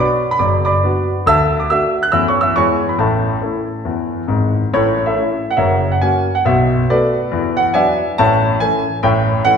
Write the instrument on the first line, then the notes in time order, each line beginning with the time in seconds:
grand piano
Already playing: B3 D4
0.00 F#4 D5 B5 D6
0.31 B5
0.39 F#1 F#2 D5 D6
0.65 D5 B5 D6
0.84 B3 D4 F#4
1.26 D2 D3 E5 A5 E6
1.60 D6
1.70 A3 D4 F#4 E5 E6
2.03 F#6
2.12 E2 E3 A3 C#4 E4 E5 E6
2.28 C#5 C#6
2.41 E5 E6
2.56 E2 E3 G#3 B3 E4 C#5 G#5 C#6
2.89 B5
2.98 A1 A2 A4 E5 A5
3.42 A3 C#4 E4
3.85 E2 E3
4.27 G#1 G#2
4.74 A1 A2 E4 A4 C#5
5.06 A4 C#5 E5
5.14 A3 C#4 E4
5.51 F#5
5.57 F#1 F#2 A#4 C#5 E5
5.92 F#5
6.01 A#3 C#4 F#4 G#5
6.35 F#5
6.45 B1 B2 E5
6.90 A3 B3 F#4 A4 B4 D5
7.32 E2 E3
7.57 F#5
7.74 F#3 B3 D4 D5 E5 G#5
8.18 A1 A2 C#5 E5 A5
8.60 E3 A3 C#4 G#5
9.03 A1 A2 C#5 E5 G5
9.45 E3 A3 C#4 F#5